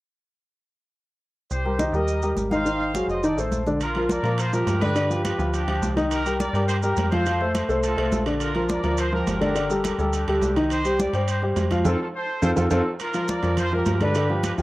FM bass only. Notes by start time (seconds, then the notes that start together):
1.51 C2
1.93 D#2
2.36 G#1
3.08 F1
3.37 A1
3.51 A#1
4.23 A#2
4.67 G2
5.39 D2
5.67 D2
5.82 C2
6.53 G2
6.97 F2
7.69 C2
7.97 C2
8.12 A#1
8.84 D2
9.27 G1
9.99 D2
10.28 D2
10.42 C2
11.13 G2
11.56 F2
11.85 F2
12.42 F2
12.57 F2
12.71 F2
13.43 F2
13.86 G2
14.58 D2